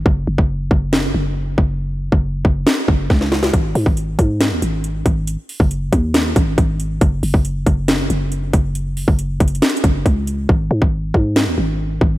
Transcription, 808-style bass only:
X:1
M:4/4
L:1/16
Q:1/4=138
K:F#mix
V:1 name="808-style bass" clef=bass
F,,,2 F,,, F,,,3 F,,,4 F,,,4 F,,,2- | F,,,3 F,,,3 F,,,2 z2 F,,,2 C,,4 | G,,,2 G,, G,,,3 G,,3 D,, G,,,4 G,,,2- | G,,, z2 F,,,3 D,,4 G,,,2 G,,,4 |
F,,,2 F,,, F,,,3 F,,,4 F,,,4 F,,,2- | F,,,3 F,,,3 F,,,2 z2 F,,,2 C,,4 | G,,,2 G,, G,,,3 G,,3 D,, G,,,4 G,,,2 |]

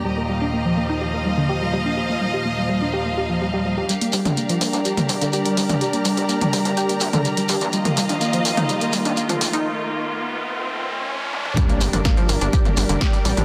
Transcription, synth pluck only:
X:1
M:4/4
L:1/16
Q:1/4=125
K:Gm
V:1 name="Synth pluck"
G, B, G, D B, F, B, E G B, G, D, G G, G, D | G B, G, G B, G, G, D G B, G F, G, G, G, G | G, B, G, D B, F, B, D G B, G, D, G G, G, D | G B, G, G B, G, G, D G B, G D, G, G, G, D |
G, B, G, D B, F, B, E G, B, G, D B, F, B, E | z16 | G, B, G, D B, F, B, D G B, G, D, G G, G, D |]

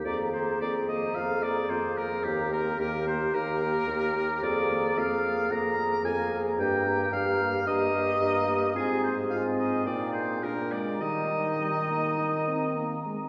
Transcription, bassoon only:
X:1
M:4/4
L:1/8
Q:1/4=110
K:Eb
V:1 name="Bassoon" clef=bass
F,,2 F,,2 F,,2 F,,2 | E,,2 E,,2 E,,2 E,,2 | F,,2 F,,2 F,,2 F,,2 | G,,2 G,,2 G,,2 G,,2 |
A,,4 B,,2 B,,2 | E,6- E, z |]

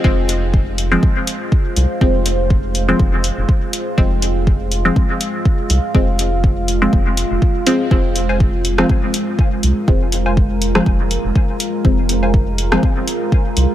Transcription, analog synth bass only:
X:1
M:4/4
L:1/16
Q:"Swing 16ths" 1/4=122
K:Fm
V:1 name="Analog synth bass" clef=bass
F,,,6- F,,, z6 z C,, z | F,,,6- F,,, z F,,,2 z F,,, z4 | F,,,6- F,,, z6 z C,, z | F,,,6- F,,, z F,,,2 z F,,, z4 |
F,,,6- F,,, z6 z C,, z | F,,,6- F,,, z F,,,2 z F,,, z4 | F,,,6- F,,, z6 z C,, z |]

